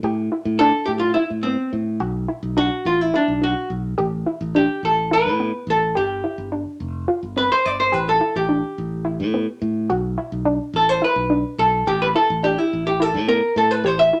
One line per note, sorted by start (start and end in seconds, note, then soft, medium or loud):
0.03 0.29 A2 medium
0.03 0.18 G4 medium
0.32 0.46 E4 medium
0.45 0.71 A2 medium
0.59 0.89 D4 medium
0.59 0.85 A4 loud
0.86 1.13 A2 medium
0.86 0.91 G4 medium
0.99 1.14 F4 medium
1.14 1.22 E4 medium
1.14 1.31 E4 medium
1.30 1.56 A2 medium
1.43 1.74 B3 medium
1.43 1.69 C4 medium
1.73 1.98 A2 medium
2.00 2.26 B1 medium
2.00 2.15 F#4 medium
2.28 2.43 E4 medium
2.43 2.68 B1 medium
2.57 2.86 D4 medium
2.57 2.86 F#4 loud
2.85 3.11 A1 medium
2.85 3.01 F4 medium
3.01 3.14 E4 medium
3.14 3.43 D4 medium
3.14 3.28 E4 medium
3.28 3.53 B1 medium
3.42 3.71 D4 medium
3.42 3.69 F#4 medium
3.70 3.96 B1 medium
3.98 4.24 A1 medium
3.98 4.12 G4 medium
4.26 4.41 E4 medium
4.41 4.66 A1 medium
4.55 4.84 D4 medium
4.55 4.81 G4 medium
4.83 5.27 A1 medium
4.83 5.10 A4 medium
5.11 5.26 E4 medium
5.11 5.70 B4 loud
5.25 5.51 A2 medium
5.40 5.69 B3 medium
5.67 5.93 A1 medium
5.67 5.97 A4 medium
5.95 6.22 G1 medium
5.95 6.10 G4 medium
5.95 6.49 G4 medium
6.24 6.38 E4 medium
6.38 6.64 G1 medium
6.52 6.81 D4 medium
6.80 7.06 F1 medium
7.08 7.23 F4 medium
7.23 7.48 G1 medium
7.36 7.66 C4 medium
7.36 7.51 B4 medium
7.52 7.65 C5 loud
7.65 7.91 G1 medium
7.65 7.79 D5 medium
7.80 7.94 C5 medium
7.92 8.19 A1 medium
7.92 8.07 G4 medium
7.92 8.08 B4 medium
8.09 8.34 A4 medium
8.21 8.36 E4 medium
8.36 8.61 A1 medium
8.36 9.73 G4 medium
8.49 8.78 D4 medium
8.78 9.21 A1 medium
9.05 9.20 E4 medium
9.20 9.46 A2 medium
9.34 9.63 B3 medium
9.62 9.88 A2 medium
9.90 10.16 B1 medium
9.90 10.04 F#4 medium
10.18 10.33 E4 medium
10.32 10.58 B1 medium
10.45 10.75 D4 medium
10.74 11.00 A1 medium
10.74 10.89 A4 medium
10.89 11.03 C5 medium
11.02 11.17 E4 medium
11.02 11.59 B4 medium
11.16 11.42 B1 medium
11.30 11.60 D4 medium
11.58 11.85 B1 medium
11.58 11.88 A4 medium
11.87 12.13 A1 loud
11.87 12.02 G4 medium
12.02 12.07 B4 medium
12.15 12.30 E4 medium
12.15 12.45 A4 medium
12.30 12.56 A1 medium
12.43 12.73 D4 medium
12.43 12.58 G4 medium
12.58 12.86 E4 medium
12.73 13.16 A1 medium
12.87 13.02 G4 medium
13.00 13.15 E4 medium
13.00 13.28 A4 medium
13.14 13.40 A2 medium
13.28 13.58 B3 medium
13.28 13.57 A#4 loud
13.56 13.82 A2 medium
13.56 13.71 A4 medium
13.71 13.86 B4 medium
13.84 14.10 A1 loud
13.84 13.99 G4 medium
13.84 13.99 C5 loud
13.99 14.20 E5 medium
14.13 14.20 E4 medium